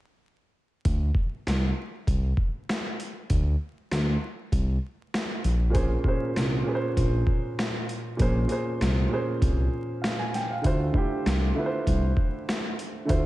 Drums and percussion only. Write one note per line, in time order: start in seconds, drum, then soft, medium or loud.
0.85 kick loud
0.85 closed hi-hat medium
1.15 kick medium
1.47 snare loud
1.47 snare medium
1.47 closed hi-hat medium
2.07 kick medium
2.07 closed hi-hat medium
2.37 kick medium
2.69 snare loud
2.69 closed hi-hat medium
3.00 closed hi-hat medium
3.30 kick loud
3.30 closed hi-hat medium
3.92 snare loud
3.92 snare medium
3.92 closed hi-hat medium
4.52 kick medium
4.52 closed hi-hat medium
5.14 snare loud
5.14 closed hi-hat medium
5.44 closed hi-hat medium
5.75 kick loud
5.75 closed hi-hat medium
6.04 kick medium
6.36 snare loud
6.36 snare medium
6.36 closed hi-hat medium
6.97 kick medium
6.97 closed hi-hat medium
7.27 kick medium
7.59 snare loud
7.59 closed hi-hat medium
7.89 closed hi-hat medium
8.19 kick loud
8.19 closed hi-hat medium
8.49 closed hi-hat medium
8.81 snare loud
8.81 snare medium
8.81 closed hi-hat medium
9.42 kick medium
9.42 closed hi-hat medium
10.04 snare loud
10.04 closed hi-hat medium
10.34 snare soft
10.34 closed hi-hat medium
10.64 kick loud
10.64 closed hi-hat medium
10.94 kick medium
11.26 snare loud
11.26 snare medium
11.26 closed hi-hat medium
11.87 kick medium
11.87 closed hi-hat medium
12.17 kick medium
12.49 snare loud
12.49 snare medium
12.49 closed hi-hat medium
12.79 closed hi-hat medium
13.09 kick loud
13.09 closed hi-hat medium